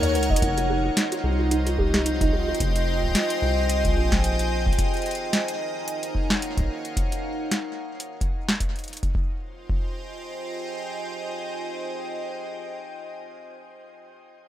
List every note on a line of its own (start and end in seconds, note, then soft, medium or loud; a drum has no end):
0.00 0.16 D#2 loud
0.00 2.02 D#4 medium
0.00 1.23 A#4 medium
0.00 0.42 C#5 medium
0.00 0.13 C#5 loud
0.00 0.42 F#5 medium
0.00 closed hi-hat medium
0.15 0.34 C#2 medium
0.15 0.28 A#4 medium
0.15 closed hi-hat medium
0.23 closed hi-hat medium
0.30 0.42 D#5 loud
0.30 kick loud
0.36 closed hi-hat medium
0.42 0.91 F1 loud
0.42 0.55 D#4 medium
0.42 4.79 F4 medium
0.42 kick loud
0.42 closed hi-hat medium
0.54 0.68 F4 medium
0.54 4.78 C5 medium
0.58 closed hi-hat medium
0.63 5.66 D#5 medium
0.70 0.83 G4 medium
0.85 0.95 F4 medium
0.97 1.10 D#4 medium
0.97 snare loud
0.97 closed hi-hat medium
1.12 1.18 F4 loud
1.12 closed hi-hat medium
1.24 2.54 C2 loud
1.24 1.32 G4 medium
1.39 1.50 F4 medium
1.51 1.59 D#4 loud
1.51 closed hi-hat medium
1.67 1.77 F4 medium
1.67 closed hi-hat medium
1.79 1.92 G4 loud
1.79 4.79 G5 medium
1.79 kick medium
1.94 2.04 G4 medium
1.94 snare loud
2.06 2.19 D#4 medium
2.06 closed hi-hat medium
2.21 2.32 D#4 loud
2.21 kick loud
2.21 closed hi-hat medium
2.33 2.46 G4 medium
2.40 5.67 G#5 medium
2.48 2.59 F4 medium
2.55 closed hi-hat soft
2.60 3.09 F1 loud
2.60 kick loud
2.60 closed hi-hat medium
2.76 closed hi-hat medium
3.03 kick soft
3.06 kick soft
3.09 kick medium
3.12 kick medium
3.12 snare loud
3.12 closed hi-hat medium
3.30 closed hi-hat medium
3.42 3.96 C2 loud
3.69 closed hi-hat medium
3.85 kick loud
3.85 closed hi-hat medium
3.97 4.72 A#1 loud
4.12 kick medium
4.12 snare loud
4.24 closed hi-hat medium
4.39 closed hi-hat medium
4.67 kick loud
4.73 closed hi-hat soft
4.79 6.97 D#4 medium
4.79 kick loud
4.79 closed hi-hat medium
4.94 closed hi-hat soft
4.97 closed hi-hat soft
5.02 closed hi-hat soft
5.06 closed hi-hat soft
5.11 closed hi-hat soft
5.15 closed hi-hat soft
5.33 6.97 A#4 medium
5.33 snare loud
5.33 closed hi-hat medium
5.48 closed hi-hat medium
5.88 closed hi-hat medium
6.03 closed hi-hat medium
6.15 kick medium
6.30 snare loud
6.42 closed hi-hat medium
6.58 kick loud
6.58 closed hi-hat medium
6.59 kick medium
6.63 kick medium
6.65 kick medium
6.67 kick soft
6.85 closed hi-hat soft
6.97 kick loud
6.97 closed hi-hat medium
7.12 closed hi-hat soft
7.51 snare loud
7.51 closed hi-hat medium
8.00 closed hi-hat medium
8.21 kick loud
8.21 closed hi-hat medium
8.49 snare loud
8.60 kick medium
8.60 closed hi-hat medium
8.76 closed hi-hat soft
8.79 closed hi-hat soft
8.84 closed hi-hat soft
8.88 closed hi-hat soft
8.93 closed hi-hat soft
8.97 closed hi-hat soft
9.03 kick loud
9.03 closed hi-hat soft
9.15 12.16 F4 medium
9.15 kick loud
9.24 12.25 C5 medium
9.33 12.34 D#5 medium
9.40 12.41 G5 medium
9.48 12.49 G#5 medium
9.70 kick loud